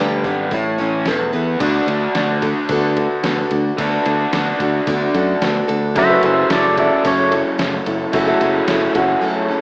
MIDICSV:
0, 0, Header, 1, 7, 480
1, 0, Start_track
1, 0, Tempo, 544465
1, 1419, Time_signature, 4, 2, 24, 8
1, 8472, End_track
2, 0, Start_track
2, 0, Title_t, "Pedal steel guitar"
2, 0, Program_c, 0, 26
2, 5268, Note_on_c, 0, 72, 75
2, 5279, Note_on_c, 0, 76, 88
2, 5502, Note_off_c, 0, 72, 0
2, 5502, Note_off_c, 0, 76, 0
2, 5510, Note_on_c, 0, 72, 74
2, 5516, Note_on_c, 0, 76, 83
2, 5729, Note_off_c, 0, 72, 0
2, 5739, Note_off_c, 0, 76, 0
2, 5746, Note_on_c, 0, 69, 66
2, 5753, Note_on_c, 0, 74, 82
2, 5966, Note_off_c, 0, 69, 0
2, 5979, Note_off_c, 0, 74, 0
2, 5988, Note_on_c, 0, 69, 68
2, 5990, Note_on_c, 0, 74, 76
2, 6207, Note_off_c, 0, 69, 0
2, 6216, Note_off_c, 0, 74, 0
2, 6236, Note_on_c, 0, 73, 93
2, 6460, Note_off_c, 0, 73, 0
2, 8472, End_track
3, 0, Start_track
3, 0, Title_t, "Grand piano"
3, 0, Program_c, 1, 0
3, 5257, Note_on_c, 1, 66, 82
3, 5259, Note_on_c, 1, 69, 73
3, 5264, Note_on_c, 1, 76, 94
3, 5359, Note_off_c, 1, 66, 0
3, 5359, Note_off_c, 1, 69, 0
3, 5368, Note_off_c, 1, 76, 0
3, 5372, Note_on_c, 1, 66, 83
3, 5372, Note_on_c, 1, 69, 74
3, 5373, Note_on_c, 1, 71, 94
3, 5910, Note_off_c, 1, 66, 0
3, 5910, Note_off_c, 1, 69, 0
3, 5910, Note_off_c, 1, 71, 0
3, 5974, Note_on_c, 1, 66, 83
3, 5980, Note_on_c, 1, 69, 80
3, 5984, Note_on_c, 1, 76, 89
3, 6831, Note_off_c, 1, 66, 0
3, 6834, Note_off_c, 1, 69, 0
3, 6836, Note_off_c, 1, 76, 0
3, 7173, Note_on_c, 1, 66, 79
3, 7176, Note_on_c, 1, 69, 68
3, 7180, Note_on_c, 1, 76, 90
3, 7276, Note_off_c, 1, 66, 0
3, 7280, Note_off_c, 1, 69, 0
3, 7280, Note_off_c, 1, 76, 0
3, 7290, Note_on_c, 1, 66, 88
3, 7293, Note_on_c, 1, 69, 80
3, 7293, Note_on_c, 1, 76, 97
3, 7827, Note_off_c, 1, 66, 0
3, 7829, Note_off_c, 1, 69, 0
3, 7829, Note_off_c, 1, 76, 0
3, 7892, Note_on_c, 1, 66, 86
3, 7895, Note_on_c, 1, 69, 79
3, 7900, Note_on_c, 1, 78, 96
3, 8472, Note_off_c, 1, 66, 0
3, 8472, Note_off_c, 1, 69, 0
3, 8472, Note_off_c, 1, 78, 0
3, 8472, End_track
4, 0, Start_track
4, 0, Title_t, "Steel-string acoustic guitar"
4, 0, Program_c, 2, 25
4, 0, Note_on_c, 2, 55, 79
4, 0, Note_on_c, 2, 62, 76
4, 0, Note_on_c, 2, 67, 76
4, 0, Note_on_c, 2, 71, 84
4, 199, Note_off_c, 2, 71, 0
4, 209, Note_on_c, 2, 71, 52
4, 218, Note_off_c, 2, 67, 0
4, 220, Note_off_c, 2, 55, 0
4, 224, Note_off_c, 2, 62, 0
4, 229, Note_on_c, 2, 67, 49
4, 244, Note_on_c, 2, 62, 45
4, 449, Note_on_c, 2, 57, 56
4, 454, Note_off_c, 2, 71, 0
4, 457, Note_off_c, 2, 62, 0
4, 461, Note_on_c, 2, 61, 65
4, 464, Note_off_c, 2, 67, 0
4, 471, Note_on_c, 2, 64, 60
4, 478, Note_on_c, 2, 73, 72
4, 678, Note_off_c, 2, 73, 0
4, 689, Note_on_c, 2, 73, 52
4, 694, Note_off_c, 2, 57, 0
4, 694, Note_off_c, 2, 64, 0
4, 700, Note_off_c, 2, 61, 0
4, 704, Note_on_c, 2, 64, 48
4, 714, Note_on_c, 2, 61, 46
4, 719, Note_on_c, 2, 57, 43
4, 928, Note_off_c, 2, 57, 0
4, 934, Note_off_c, 2, 73, 0
4, 934, Note_on_c, 2, 52, 74
4, 936, Note_off_c, 2, 64, 0
4, 938, Note_on_c, 2, 57, 78
4, 943, Note_off_c, 2, 61, 0
4, 947, Note_on_c, 2, 64, 81
4, 950, Note_on_c, 2, 69, 76
4, 955, Note_on_c, 2, 71, 93
4, 1159, Note_off_c, 2, 71, 0
4, 1170, Note_on_c, 2, 71, 53
4, 1176, Note_off_c, 2, 52, 0
4, 1177, Note_off_c, 2, 69, 0
4, 1179, Note_off_c, 2, 57, 0
4, 1183, Note_off_c, 2, 64, 0
4, 1188, Note_on_c, 2, 69, 48
4, 1196, Note_on_c, 2, 64, 39
4, 1406, Note_on_c, 2, 50, 70
4, 1412, Note_off_c, 2, 64, 0
4, 1412, Note_on_c, 2, 59, 76
4, 1415, Note_off_c, 2, 71, 0
4, 1416, Note_on_c, 2, 62, 82
4, 1417, Note_off_c, 2, 69, 0
4, 1421, Note_on_c, 2, 66, 72
4, 1429, Note_on_c, 2, 69, 80
4, 1645, Note_off_c, 2, 69, 0
4, 1653, Note_off_c, 2, 50, 0
4, 1655, Note_on_c, 2, 69, 52
4, 1656, Note_off_c, 2, 59, 0
4, 1657, Note_off_c, 2, 62, 0
4, 1660, Note_off_c, 2, 66, 0
4, 1670, Note_on_c, 2, 66, 49
4, 1685, Note_on_c, 2, 62, 39
4, 1893, Note_off_c, 2, 62, 0
4, 1894, Note_on_c, 2, 59, 61
4, 1897, Note_off_c, 2, 69, 0
4, 1904, Note_on_c, 2, 62, 66
4, 1905, Note_off_c, 2, 66, 0
4, 1918, Note_on_c, 2, 66, 65
4, 1924, Note_on_c, 2, 69, 64
4, 2129, Note_off_c, 2, 69, 0
4, 2137, Note_off_c, 2, 59, 0
4, 2140, Note_on_c, 2, 69, 57
4, 2142, Note_off_c, 2, 62, 0
4, 2146, Note_off_c, 2, 66, 0
4, 2157, Note_on_c, 2, 66, 49
4, 2163, Note_on_c, 2, 62, 49
4, 2376, Note_on_c, 2, 50, 80
4, 2378, Note_off_c, 2, 62, 0
4, 2380, Note_off_c, 2, 66, 0
4, 2380, Note_off_c, 2, 69, 0
4, 2384, Note_on_c, 2, 59, 78
4, 2388, Note_on_c, 2, 62, 83
4, 2391, Note_on_c, 2, 66, 83
4, 2399, Note_on_c, 2, 69, 87
4, 2609, Note_off_c, 2, 69, 0
4, 2618, Note_off_c, 2, 50, 0
4, 2619, Note_on_c, 2, 69, 52
4, 2622, Note_off_c, 2, 59, 0
4, 2624, Note_off_c, 2, 62, 0
4, 2625, Note_off_c, 2, 66, 0
4, 2637, Note_on_c, 2, 66, 46
4, 2645, Note_on_c, 2, 62, 42
4, 2849, Note_on_c, 2, 59, 63
4, 2850, Note_off_c, 2, 62, 0
4, 2857, Note_off_c, 2, 66, 0
4, 2860, Note_off_c, 2, 69, 0
4, 2861, Note_on_c, 2, 62, 66
4, 2868, Note_on_c, 2, 66, 66
4, 2879, Note_on_c, 2, 69, 70
4, 3090, Note_off_c, 2, 69, 0
4, 3094, Note_off_c, 2, 59, 0
4, 3100, Note_off_c, 2, 62, 0
4, 3101, Note_on_c, 2, 69, 53
4, 3104, Note_off_c, 2, 66, 0
4, 3115, Note_on_c, 2, 66, 51
4, 3127, Note_on_c, 2, 62, 46
4, 3335, Note_on_c, 2, 50, 75
4, 3336, Note_off_c, 2, 62, 0
4, 3340, Note_off_c, 2, 69, 0
4, 3340, Note_on_c, 2, 59, 81
4, 3342, Note_off_c, 2, 66, 0
4, 3347, Note_on_c, 2, 62, 85
4, 3353, Note_on_c, 2, 66, 86
4, 3354, Note_on_c, 2, 69, 86
4, 3558, Note_off_c, 2, 69, 0
4, 3568, Note_on_c, 2, 69, 54
4, 3573, Note_off_c, 2, 66, 0
4, 3577, Note_off_c, 2, 50, 0
4, 3580, Note_off_c, 2, 59, 0
4, 3583, Note_off_c, 2, 62, 0
4, 3583, Note_on_c, 2, 66, 44
4, 3598, Note_on_c, 2, 62, 41
4, 3809, Note_off_c, 2, 62, 0
4, 3812, Note_on_c, 2, 59, 62
4, 3814, Note_off_c, 2, 69, 0
4, 3819, Note_on_c, 2, 62, 66
4, 3821, Note_off_c, 2, 66, 0
4, 3832, Note_on_c, 2, 66, 67
4, 3836, Note_on_c, 2, 69, 76
4, 4045, Note_off_c, 2, 69, 0
4, 4056, Note_off_c, 2, 59, 0
4, 4056, Note_on_c, 2, 69, 53
4, 4059, Note_off_c, 2, 62, 0
4, 4062, Note_off_c, 2, 66, 0
4, 4072, Note_on_c, 2, 66, 55
4, 4084, Note_on_c, 2, 62, 46
4, 4295, Note_off_c, 2, 62, 0
4, 4296, Note_on_c, 2, 50, 74
4, 4298, Note_off_c, 2, 69, 0
4, 4299, Note_off_c, 2, 66, 0
4, 4303, Note_on_c, 2, 59, 83
4, 4306, Note_on_c, 2, 62, 93
4, 4309, Note_on_c, 2, 66, 97
4, 4316, Note_on_c, 2, 69, 89
4, 4528, Note_off_c, 2, 69, 0
4, 4538, Note_off_c, 2, 50, 0
4, 4539, Note_on_c, 2, 69, 64
4, 4541, Note_off_c, 2, 59, 0
4, 4542, Note_off_c, 2, 66, 0
4, 4543, Note_off_c, 2, 62, 0
4, 4553, Note_on_c, 2, 66, 53
4, 4567, Note_on_c, 2, 62, 46
4, 4772, Note_off_c, 2, 62, 0
4, 4773, Note_on_c, 2, 59, 65
4, 4779, Note_off_c, 2, 69, 0
4, 4781, Note_off_c, 2, 66, 0
4, 4783, Note_on_c, 2, 62, 69
4, 4791, Note_on_c, 2, 66, 73
4, 4800, Note_on_c, 2, 69, 74
4, 4998, Note_off_c, 2, 69, 0
4, 5009, Note_on_c, 2, 69, 63
4, 5010, Note_off_c, 2, 66, 0
4, 5016, Note_off_c, 2, 59, 0
4, 5020, Note_on_c, 2, 66, 48
4, 5021, Note_off_c, 2, 62, 0
4, 5037, Note_on_c, 2, 62, 45
4, 5254, Note_off_c, 2, 69, 0
4, 5259, Note_on_c, 2, 57, 76
4, 5260, Note_off_c, 2, 66, 0
4, 5260, Note_on_c, 2, 54, 77
4, 5261, Note_off_c, 2, 62, 0
4, 5264, Note_on_c, 2, 61, 86
4, 5271, Note_on_c, 2, 64, 82
4, 5278, Note_on_c, 2, 69, 86
4, 5488, Note_off_c, 2, 69, 0
4, 5499, Note_off_c, 2, 54, 0
4, 5499, Note_off_c, 2, 57, 0
4, 5499, Note_on_c, 2, 69, 51
4, 5502, Note_off_c, 2, 61, 0
4, 5505, Note_off_c, 2, 64, 0
4, 5514, Note_on_c, 2, 64, 51
4, 5529, Note_on_c, 2, 61, 43
4, 5735, Note_off_c, 2, 61, 0
4, 5738, Note_on_c, 2, 57, 58
4, 5739, Note_off_c, 2, 69, 0
4, 5746, Note_off_c, 2, 64, 0
4, 5746, Note_on_c, 2, 61, 71
4, 5756, Note_on_c, 2, 64, 65
4, 5765, Note_on_c, 2, 69, 66
4, 5963, Note_off_c, 2, 69, 0
4, 5974, Note_on_c, 2, 69, 55
4, 5978, Note_off_c, 2, 57, 0
4, 5978, Note_off_c, 2, 64, 0
4, 5982, Note_off_c, 2, 61, 0
4, 5988, Note_on_c, 2, 64, 52
4, 6002, Note_on_c, 2, 61, 50
4, 6212, Note_off_c, 2, 61, 0
4, 6212, Note_on_c, 2, 54, 82
4, 6216, Note_off_c, 2, 69, 0
4, 6217, Note_off_c, 2, 64, 0
4, 6218, Note_on_c, 2, 57, 76
4, 6222, Note_on_c, 2, 61, 95
4, 6227, Note_on_c, 2, 64, 94
4, 6229, Note_on_c, 2, 69, 86
4, 6437, Note_off_c, 2, 69, 0
4, 6448, Note_on_c, 2, 69, 59
4, 6455, Note_off_c, 2, 54, 0
4, 6458, Note_off_c, 2, 57, 0
4, 6459, Note_off_c, 2, 64, 0
4, 6460, Note_off_c, 2, 61, 0
4, 6469, Note_on_c, 2, 64, 49
4, 6482, Note_on_c, 2, 61, 49
4, 6683, Note_off_c, 2, 61, 0
4, 6684, Note_on_c, 2, 57, 68
4, 6692, Note_off_c, 2, 64, 0
4, 6693, Note_off_c, 2, 69, 0
4, 6694, Note_on_c, 2, 61, 75
4, 6703, Note_on_c, 2, 64, 74
4, 6713, Note_on_c, 2, 69, 78
4, 6924, Note_off_c, 2, 69, 0
4, 6931, Note_off_c, 2, 57, 0
4, 6934, Note_on_c, 2, 69, 63
4, 6935, Note_off_c, 2, 61, 0
4, 6938, Note_off_c, 2, 64, 0
4, 6948, Note_on_c, 2, 64, 52
4, 6961, Note_on_c, 2, 61, 47
4, 7171, Note_on_c, 2, 54, 82
4, 7173, Note_off_c, 2, 61, 0
4, 7173, Note_on_c, 2, 57, 88
4, 7174, Note_off_c, 2, 64, 0
4, 7176, Note_off_c, 2, 69, 0
4, 7184, Note_on_c, 2, 61, 82
4, 7185, Note_on_c, 2, 64, 84
4, 7191, Note_on_c, 2, 69, 96
4, 7398, Note_off_c, 2, 69, 0
4, 7408, Note_on_c, 2, 69, 56
4, 7412, Note_off_c, 2, 64, 0
4, 7414, Note_off_c, 2, 54, 0
4, 7415, Note_off_c, 2, 57, 0
4, 7420, Note_off_c, 2, 61, 0
4, 7423, Note_on_c, 2, 64, 54
4, 7437, Note_on_c, 2, 61, 42
4, 7648, Note_off_c, 2, 61, 0
4, 7648, Note_on_c, 2, 57, 64
4, 7652, Note_off_c, 2, 69, 0
4, 7655, Note_off_c, 2, 64, 0
4, 7659, Note_on_c, 2, 61, 68
4, 7665, Note_on_c, 2, 64, 75
4, 7675, Note_on_c, 2, 69, 73
4, 7876, Note_off_c, 2, 69, 0
4, 7887, Note_on_c, 2, 69, 59
4, 7892, Note_off_c, 2, 57, 0
4, 7895, Note_off_c, 2, 64, 0
4, 7897, Note_off_c, 2, 61, 0
4, 7905, Note_on_c, 2, 64, 54
4, 7919, Note_on_c, 2, 61, 45
4, 8118, Note_off_c, 2, 61, 0
4, 8119, Note_on_c, 2, 54, 76
4, 8123, Note_off_c, 2, 64, 0
4, 8124, Note_on_c, 2, 57, 87
4, 8128, Note_on_c, 2, 61, 86
4, 8131, Note_off_c, 2, 69, 0
4, 8134, Note_on_c, 2, 64, 96
4, 8140, Note_on_c, 2, 69, 96
4, 8351, Note_off_c, 2, 69, 0
4, 8362, Note_on_c, 2, 69, 61
4, 8367, Note_off_c, 2, 54, 0
4, 8369, Note_off_c, 2, 64, 0
4, 8370, Note_off_c, 2, 57, 0
4, 8372, Note_off_c, 2, 61, 0
4, 8379, Note_on_c, 2, 64, 53
4, 8389, Note_on_c, 2, 61, 47
4, 8472, Note_off_c, 2, 61, 0
4, 8472, Note_off_c, 2, 64, 0
4, 8472, Note_off_c, 2, 69, 0
4, 8472, End_track
5, 0, Start_track
5, 0, Title_t, "Overdriven electric guitar"
5, 0, Program_c, 3, 29
5, 0, Note_on_c, 3, 43, 70
5, 0, Note_on_c, 3, 50, 56
5, 219, Note_on_c, 3, 59, 67
5, 457, Note_off_c, 3, 50, 0
5, 458, Note_off_c, 3, 43, 0
5, 459, Note_off_c, 3, 59, 0
5, 461, Note_on_c, 3, 45, 71
5, 934, Note_on_c, 3, 40, 64
5, 940, Note_off_c, 3, 45, 0
5, 1176, Note_on_c, 3, 59, 58
5, 1415, Note_on_c, 3, 57, 82
5, 1417, Note_off_c, 3, 40, 0
5, 1418, Note_off_c, 3, 59, 0
5, 3334, Note_off_c, 3, 57, 0
5, 3337, Note_on_c, 3, 57, 97
5, 5247, Note_on_c, 3, 42, 90
5, 5256, Note_on_c, 3, 49, 89
5, 5266, Note_off_c, 3, 57, 0
5, 5282, Note_on_c, 3, 66, 89
5, 7150, Note_off_c, 3, 42, 0
5, 7161, Note_off_c, 3, 49, 0
5, 7161, Note_on_c, 3, 42, 85
5, 7172, Note_on_c, 3, 49, 90
5, 7192, Note_off_c, 3, 66, 0
5, 7196, Note_on_c, 3, 66, 100
5, 8472, Note_off_c, 3, 42, 0
5, 8472, Note_off_c, 3, 49, 0
5, 8472, Note_off_c, 3, 66, 0
5, 8472, End_track
6, 0, Start_track
6, 0, Title_t, "Fingered electric bass"
6, 0, Program_c, 4, 33
6, 0, Note_on_c, 4, 38, 79
6, 200, Note_off_c, 4, 38, 0
6, 217, Note_on_c, 4, 32, 80
6, 455, Note_off_c, 4, 32, 0
6, 455, Note_on_c, 4, 33, 83
6, 678, Note_off_c, 4, 33, 0
6, 702, Note_on_c, 4, 33, 80
6, 922, Note_off_c, 4, 33, 0
6, 938, Note_on_c, 4, 28, 84
6, 1159, Note_off_c, 4, 28, 0
6, 1175, Note_on_c, 4, 40, 77
6, 1398, Note_off_c, 4, 40, 0
6, 1413, Note_on_c, 4, 38, 83
6, 1579, Note_off_c, 4, 38, 0
6, 1651, Note_on_c, 4, 38, 83
6, 1818, Note_off_c, 4, 38, 0
6, 1895, Note_on_c, 4, 38, 88
6, 2225, Note_off_c, 4, 38, 0
6, 2373, Note_on_c, 4, 38, 82
6, 2703, Note_off_c, 4, 38, 0
6, 2855, Note_on_c, 4, 38, 86
6, 3020, Note_off_c, 4, 38, 0
6, 3098, Note_on_c, 4, 38, 88
6, 3263, Note_off_c, 4, 38, 0
6, 3335, Note_on_c, 4, 38, 89
6, 3500, Note_off_c, 4, 38, 0
6, 3580, Note_on_c, 4, 38, 91
6, 3744, Note_off_c, 4, 38, 0
6, 3817, Note_on_c, 4, 38, 87
6, 3982, Note_off_c, 4, 38, 0
6, 4054, Note_on_c, 4, 38, 84
6, 4220, Note_off_c, 4, 38, 0
6, 4295, Note_on_c, 4, 38, 89
6, 4460, Note_off_c, 4, 38, 0
6, 4536, Note_on_c, 4, 42, 92
6, 4701, Note_off_c, 4, 42, 0
6, 4779, Note_on_c, 4, 38, 86
6, 4943, Note_off_c, 4, 38, 0
6, 5019, Note_on_c, 4, 38, 86
6, 5257, Note_on_c, 4, 30, 84
6, 5270, Note_off_c, 4, 38, 0
6, 5421, Note_off_c, 4, 30, 0
6, 5501, Note_on_c, 4, 30, 94
6, 5664, Note_off_c, 4, 30, 0
6, 5738, Note_on_c, 4, 30, 89
6, 6066, Note_off_c, 4, 30, 0
6, 6213, Note_on_c, 4, 30, 93
6, 6543, Note_off_c, 4, 30, 0
6, 6693, Note_on_c, 4, 30, 87
6, 6858, Note_off_c, 4, 30, 0
6, 6934, Note_on_c, 4, 30, 85
6, 7099, Note_off_c, 4, 30, 0
6, 7171, Note_on_c, 4, 30, 89
6, 7337, Note_off_c, 4, 30, 0
6, 7415, Note_on_c, 4, 30, 91
6, 7580, Note_off_c, 4, 30, 0
6, 7652, Note_on_c, 4, 30, 84
6, 7817, Note_off_c, 4, 30, 0
6, 7893, Note_on_c, 4, 30, 92
6, 8058, Note_off_c, 4, 30, 0
6, 8472, End_track
7, 0, Start_track
7, 0, Title_t, "Drums"
7, 214, Note_on_c, 9, 46, 50
7, 215, Note_on_c, 9, 36, 78
7, 302, Note_off_c, 9, 46, 0
7, 303, Note_off_c, 9, 36, 0
7, 451, Note_on_c, 9, 46, 67
7, 455, Note_on_c, 9, 36, 102
7, 539, Note_off_c, 9, 46, 0
7, 543, Note_off_c, 9, 36, 0
7, 693, Note_on_c, 9, 46, 51
7, 781, Note_off_c, 9, 46, 0
7, 930, Note_on_c, 9, 46, 61
7, 931, Note_on_c, 9, 38, 96
7, 1018, Note_off_c, 9, 46, 0
7, 1020, Note_off_c, 9, 38, 0
7, 1175, Note_on_c, 9, 46, 46
7, 1264, Note_off_c, 9, 46, 0
7, 1413, Note_on_c, 9, 36, 104
7, 1413, Note_on_c, 9, 49, 100
7, 1413, Note_on_c, 9, 51, 84
7, 1501, Note_off_c, 9, 36, 0
7, 1501, Note_off_c, 9, 49, 0
7, 1501, Note_off_c, 9, 51, 0
7, 1657, Note_on_c, 9, 51, 60
7, 1745, Note_off_c, 9, 51, 0
7, 1894, Note_on_c, 9, 51, 80
7, 1896, Note_on_c, 9, 38, 112
7, 1982, Note_off_c, 9, 51, 0
7, 1984, Note_off_c, 9, 38, 0
7, 2135, Note_on_c, 9, 36, 72
7, 2135, Note_on_c, 9, 51, 66
7, 2223, Note_off_c, 9, 36, 0
7, 2223, Note_off_c, 9, 51, 0
7, 2370, Note_on_c, 9, 51, 86
7, 2374, Note_on_c, 9, 36, 107
7, 2459, Note_off_c, 9, 51, 0
7, 2462, Note_off_c, 9, 36, 0
7, 2616, Note_on_c, 9, 51, 63
7, 2704, Note_off_c, 9, 51, 0
7, 2853, Note_on_c, 9, 51, 89
7, 2855, Note_on_c, 9, 38, 106
7, 2941, Note_off_c, 9, 51, 0
7, 2943, Note_off_c, 9, 38, 0
7, 3092, Note_on_c, 9, 51, 63
7, 3180, Note_off_c, 9, 51, 0
7, 3336, Note_on_c, 9, 36, 102
7, 3336, Note_on_c, 9, 51, 96
7, 3424, Note_off_c, 9, 36, 0
7, 3424, Note_off_c, 9, 51, 0
7, 3576, Note_on_c, 9, 51, 71
7, 3664, Note_off_c, 9, 51, 0
7, 3816, Note_on_c, 9, 51, 96
7, 3818, Note_on_c, 9, 38, 117
7, 3904, Note_off_c, 9, 51, 0
7, 3906, Note_off_c, 9, 38, 0
7, 4056, Note_on_c, 9, 36, 78
7, 4057, Note_on_c, 9, 51, 70
7, 4145, Note_off_c, 9, 36, 0
7, 4145, Note_off_c, 9, 51, 0
7, 4294, Note_on_c, 9, 51, 87
7, 4296, Note_on_c, 9, 36, 104
7, 4382, Note_off_c, 9, 51, 0
7, 4384, Note_off_c, 9, 36, 0
7, 4536, Note_on_c, 9, 51, 67
7, 4624, Note_off_c, 9, 51, 0
7, 4776, Note_on_c, 9, 51, 82
7, 4778, Note_on_c, 9, 38, 101
7, 4864, Note_off_c, 9, 51, 0
7, 4866, Note_off_c, 9, 38, 0
7, 5016, Note_on_c, 9, 51, 67
7, 5104, Note_off_c, 9, 51, 0
7, 5251, Note_on_c, 9, 51, 89
7, 5255, Note_on_c, 9, 36, 109
7, 5340, Note_off_c, 9, 51, 0
7, 5343, Note_off_c, 9, 36, 0
7, 5491, Note_on_c, 9, 51, 62
7, 5579, Note_off_c, 9, 51, 0
7, 5731, Note_on_c, 9, 51, 91
7, 5733, Note_on_c, 9, 38, 116
7, 5819, Note_off_c, 9, 51, 0
7, 5821, Note_off_c, 9, 38, 0
7, 5973, Note_on_c, 9, 51, 66
7, 5974, Note_on_c, 9, 36, 80
7, 6061, Note_off_c, 9, 51, 0
7, 6062, Note_off_c, 9, 36, 0
7, 6212, Note_on_c, 9, 51, 82
7, 6214, Note_on_c, 9, 36, 107
7, 6301, Note_off_c, 9, 51, 0
7, 6302, Note_off_c, 9, 36, 0
7, 6453, Note_on_c, 9, 51, 65
7, 6541, Note_off_c, 9, 51, 0
7, 6692, Note_on_c, 9, 51, 83
7, 6694, Note_on_c, 9, 38, 106
7, 6780, Note_off_c, 9, 51, 0
7, 6782, Note_off_c, 9, 38, 0
7, 6932, Note_on_c, 9, 51, 68
7, 7020, Note_off_c, 9, 51, 0
7, 7169, Note_on_c, 9, 51, 90
7, 7172, Note_on_c, 9, 36, 110
7, 7257, Note_off_c, 9, 51, 0
7, 7260, Note_off_c, 9, 36, 0
7, 7413, Note_on_c, 9, 51, 68
7, 7502, Note_off_c, 9, 51, 0
7, 7650, Note_on_c, 9, 51, 99
7, 7652, Note_on_c, 9, 38, 109
7, 7738, Note_off_c, 9, 51, 0
7, 7740, Note_off_c, 9, 38, 0
7, 7890, Note_on_c, 9, 51, 73
7, 7893, Note_on_c, 9, 36, 82
7, 7978, Note_off_c, 9, 51, 0
7, 7981, Note_off_c, 9, 36, 0
7, 8472, End_track
0, 0, End_of_file